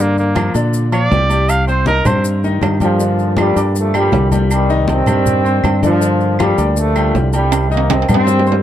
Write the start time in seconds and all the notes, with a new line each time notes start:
Already playing: G2 D3 D4
0.00 A#3 D5
0.17 A#3, high conga, maracas
0.36 F3 F4 F5, high conga, low timbale, low agogo, claves, maracas
0.54 A#2 D3 D4 D5, low agogo, maracas
0.74 high conga, maracas
0.92 F3 F4 D5 F5, high conga, low agogo, claves, maracas
1.11 C2 G3 G4 G5, high conga, low timbale, maracas
1.30 G3 G4 G5, low agogo, maracas
1.49 F5, high conga, low agogo, claves, maracas
1.68 C4 C5 C6, high conga, maracas
1.86 D#4 A#4 D#5 D#6, high conga, low timbale, low agogo, maracas
2.05 G2 C4 C5 C6, low conga, low agogo, claves, maracas
2.24 high conga, maracas
2.43 D#3 D#4 D#5, high conga, maracas
2.62 G2, high conga, low timbale, low agogo, claves, maracas
2.80 A#2 D3 F3 G3 G4 G5, high conga, low agogo, maracas
3.00 D3 D4 D5, high conga, maracas
3.18 high conga, maracas
3.37 A#2 D3 F3 G3 F4 F5, high conga, low timbale, low agogo, claves, maracas
3.56 G2 D4 D5 D6, low agogo, maracas
3.75 D3 F3 A3, high conga, maracas
3.94 A#2 D3 G3 G4 G5, high conga, low agogo, claves, maracas
4.12 C2, high conga, low timbale, maracas
4.32 G3 G4 G5, high conga, low agogo, maracas
4.51 C3 D#3 G3, high conga, low agogo, claves, maracas
4.69 D#3 D#4 D#5, high conga, maracas
4.88 D#3 G3 C4, high conga, low timbale, low agogo, maracas
5.06 G2 G3 G4 G5, low conga, low agogo, claves, maracas
5.26 high conga, low conga, maracas
5.44 C4 C5 C6, high conga, maracas
5.64 G2, high conga, low timbale, low agogo, claves, maracas
5.83 A#2 D3 F3 D4 D5, high conga, low agogo, maracas
6.01 D3 D4 D5, high conga, maracas
6.21 high conga, maracas
6.39 A#2 D3 F3 G3 F4 F5, high conga, low timbale, low agogo, claves, maracas
6.58 D2 D4 D5 D6, low agogo, maracas
6.77 D3 F3 A3, high conga, maracas
6.96 G3 G4 G5, high conga, low agogo, claves, maracas
7.15 C2, high conga, low timbale, maracas
7.33 C3 D#3 G3 G4 G5, low agogo, maracas
7.52 high conga, high timbale, low agogo, claves, maracas
7.71 D#3 A#3 D#4 D#5, high conga, maracas
7.77 high timbale
7.90 C4, high conga, high timbale, low agogo, maracas
8.02 high timbale
8.09 G2 D#3 G3 C4 G4 G5, low conga, low agogo, claves, maracas
8.14 high timbale
8.27 high conga, low timbale, maracas
8.39 low timbale
8.47 C4 C5 C6, high conga, maracas
8.52 low timbale